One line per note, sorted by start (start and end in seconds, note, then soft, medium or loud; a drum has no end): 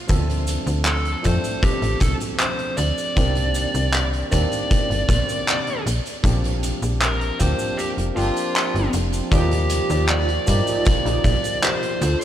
0.07 0.59 D2 loud
0.07 1.19 F3 medium
0.07 1.19 A3 medium
0.07 1.20 C4 medium
0.07 1.20 D4 medium
0.07 1.21 A4 medium
0.07 kick loud
0.07 closed hi-hat medium
0.07 cabasa soft
0.30 closed hi-hat soft
0.47 closed hi-hat loud
0.47 cabasa medium
0.67 1.16 D2 medium
0.67 closed hi-hat medium
0.67 cabasa soft
0.85 1.26 A4 medium
0.85 clap loud
0.85 closed hi-hat medium
0.85 cabasa soft
1.06 closed hi-hat medium
1.23 1.39 F2 medium
1.23 3.11 F3 medium
1.23 3.12 A3 medium
1.23 3.12 C4 medium
1.23 3.13 D4 medium
1.23 3.13 A4 medium
1.23 1.64 C5 loud
1.23 kick medium
1.23 closed hi-hat medium
1.23 cabasa medium
1.44 closed hi-hat medium
1.44 cabasa medium
1.63 2.01 G4 medium
1.63 kick loud
1.63 closed hi-hat medium
1.63 cabasa soft
1.82 1.96 A1 medium
1.82 closed hi-hat medium
2.01 2.16 C2 medium
2.01 2.12 A4 loud
2.01 kick loud
2.01 closed hi-hat loud
2.01 cabasa medium
2.20 closed hi-hat soft
2.20 cabasa soft
2.40 2.76 C5 loud
2.40 clap loud
2.40 closed hi-hat medium
2.40 cabasa soft
2.59 closed hi-hat soft
2.77 2.92 D2 medium
2.77 3.92 D5 loud
2.77 closed hi-hat medium
2.77 cabasa medium
2.98 closed hi-hat soft
2.98 cabasa soft
3.15 3.66 C2 loud
3.15 4.27 D#3 medium
3.15 4.27 A#3 medium
3.15 4.28 C4 medium
3.15 4.28 D4 medium
3.15 4.29 G4 loud
3.15 kick loud
3.15 closed hi-hat medium
3.15 cabasa soft
3.35 closed hi-hat medium
3.54 closed hi-hat loud
3.54 cabasa medium
3.74 4.24 C2 medium
3.74 closed hi-hat medium
3.74 cabasa medium
3.93 4.04 D5 loud
3.93 clap medium
3.93 closed hi-hat medium
3.93 cabasa soft
4.13 closed hi-hat soft
4.31 4.46 D#2 medium
4.31 5.83 D#3 medium
4.31 5.83 A#3 medium
4.31 5.84 C4 medium
4.31 5.84 D4 medium
4.31 5.84 G4 loud
4.31 5.82 D5 loud
4.31 kick medium
4.31 closed hi-hat loud
4.31 cabasa medium
4.52 closed hi-hat medium
4.52 cabasa soft
4.71 4.86 G1 soft
4.71 kick loud
4.71 closed hi-hat medium
4.71 cabasa soft
4.90 5.04 G1 medium
4.90 closed hi-hat medium
5.09 5.23 A#1 medium
5.09 kick loud
5.09 closed hi-hat medium
5.09 cabasa medium
5.29 closed hi-hat medium
5.29 cabasa medium
5.47 clap loud
5.47 closed hi-hat medium
5.47 cabasa soft
5.67 closed hi-hat soft
5.86 6.00 A#1 loud
5.86 closed hi-hat loud
5.86 cabasa medium
6.06 closed hi-hat soft
6.06 cabasa medium
6.23 6.73 A#1 loud
6.23 7.34 F3 medium
6.23 7.35 A#3 medium
6.23 7.35 C4 medium
6.23 7.36 D4 medium
6.23 7.36 G4 medium
6.23 kick loud
6.23 closed hi-hat medium
6.23 cabasa soft
6.44 closed hi-hat medium
6.63 closed hi-hat medium
6.63 cabasa medium
6.82 7.31 A#1 medium
6.82 closed hi-hat soft
6.82 cabasa medium
7.01 7.37 A#4 loud
7.01 clap loud
7.01 closed hi-hat medium
7.01 cabasa soft
7.21 closed hi-hat medium
7.39 7.54 D2 medium
7.39 8.13 F3 medium
7.39 8.13 A#3 medium
7.39 8.13 C4 medium
7.39 8.13 D4 medium
7.39 8.13 G4 loud
7.39 7.79 C5 loud
7.39 kick medium
7.39 closed hi-hat loud
7.39 cabasa medium
7.59 closed hi-hat soft
7.59 cabasa medium
7.77 7.88 G4 loud
7.77 closed hi-hat medium
7.77 cabasa soft
7.98 8.11 F1 medium
7.98 closed hi-hat medium
8.15 8.31 G1 medium
8.15 9.27 F3 loud
8.15 9.27 A#3 medium
8.15 9.27 C4 medium
8.15 9.28 D4 medium
8.15 8.89 F4 medium
8.15 9.28 G4 loud
8.15 closed hi-hat loud
8.15 cabasa medium
8.36 closed hi-hat medium
8.36 cabasa soft
8.55 clap loud
8.55 closed hi-hat medium
8.55 cabasa soft
8.75 8.88 G1 loud
8.75 closed hi-hat medium
8.93 9.22 F1 loud
8.93 closed hi-hat medium
8.93 cabasa medium
9.13 closed hi-hat medium
9.13 cabasa medium
9.31 9.81 D#2 loud
9.31 10.42 F3 medium
9.31 10.43 A#3 medium
9.31 9.52 D#4 loud
9.31 10.44 D#4 medium
9.31 9.52 F4 loud
9.31 10.05 G4 loud
9.31 9.52 G4 loud
9.31 10.44 G4 loud
9.31 10.43 D5 medium
9.31 9.52 D5 loud
9.31 kick loud
9.31 closed hi-hat medium
9.31 cabasa soft
9.52 closed hi-hat medium
9.70 muted clean electric guitar stroke soft
9.70 closed hi-hat loud
9.70 cabasa medium
9.90 10.39 D#2 medium
9.90 10.29 D#4 medium
9.90 10.29 F4 medium
9.90 10.29 G4 medium
9.90 10.29 D5 medium
9.90 closed hi-hat medium
9.90 cabasa medium
10.09 10.85 D5 loud
10.09 clap loud
10.09 closed hi-hat medium
10.09 cabasa soft
10.29 closed hi-hat soft
10.46 10.62 G2 medium
10.46 11.98 F3 medium
10.46 11.99 A#3 medium
10.46 12.00 D#4 medium
10.46 12.00 G4 loud
10.46 11.99 D5 medium
10.46 kick medium
10.46 closed hi-hat loud
10.46 cabasa medium
10.66 10.86 D#4 loud
10.66 10.86 F4 medium
10.66 10.86 G4 medium
10.66 10.86 D5 loud
10.66 closed hi-hat medium
10.66 cabasa medium
10.85 11.02 A#1 soft
10.85 11.65 D5 loud
10.85 kick loud
10.85 closed hi-hat medium
10.85 cabasa soft
11.05 11.19 A#1 medium
11.05 11.34 D#4 loud
11.05 11.34 F4 loud
11.05 11.34 G4 loud
11.05 11.34 D5 loud
11.05 closed hi-hat medium
11.24 11.38 A#1 medium
11.24 kick loud
11.24 closed hi-hat loud
11.24 cabasa medium
11.44 closed hi-hat medium
11.44 cabasa medium
11.62 12.00 D#4 medium
11.62 12.00 F4 medium
11.62 12.01 G4 medium
11.62 12.17 C5 loud
11.62 12.02 D5 loud
11.62 clap loud
11.62 closed hi-hat medium
11.62 cabasa soft
11.83 closed hi-hat medium
12.00 12.16 D2 loud
12.00 12.24 D4 medium
12.00 12.24 F4 medium
12.00 12.24 A4 medium
12.00 12.24 C5 loud
12.00 closed hi-hat medium
12.00 cabasa medium
12.21 closed hi-hat medium